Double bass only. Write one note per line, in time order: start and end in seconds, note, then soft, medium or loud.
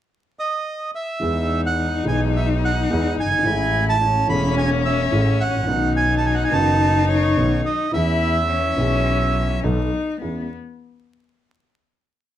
1.22 2.03 E2 medium
2.06 2.86 B1 medium
2.90 3.14 E2 medium
3.18 3.45 G1 medium
3.46 4.25 A1 medium
4.29 5.08 E1 medium
5.12 5.36 A1 medium
5.40 5.67 A1 medium
5.68 6.48 B1 medium
6.52 7.33 F#1 medium
7.36 7.60 B1 medium
7.92 8.73 E2 medium
8.77 9.59 B1 medium
9.64 9.88 B1 medium
10.22 10.45 E2 soft